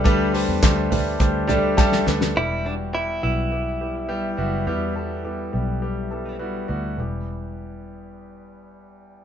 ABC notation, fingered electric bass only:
X:1
M:4/4
L:1/16
Q:1/4=104
K:Em
V:1 name="Fingered electric bass" clef=bass
D,,3 E,, D,,4 D,,6 D,,2 | E,,,6 B,,,8 F,,,2 | E,,6 B,,,8 D,,2 | E,,,16 |]